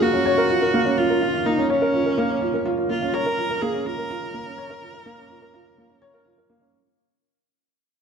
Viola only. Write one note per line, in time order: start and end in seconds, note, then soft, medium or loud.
0.02 1.00 F#4 loud
0.98 1.47 F4 loud
1.46 1.71 D#4 medium
1.70 2.66 C#4 medium
2.90 3.15 F4 loud
3.13 3.63 A#4 loud
3.62 3.87 G#4 loud
3.86 6.26 A#4 loud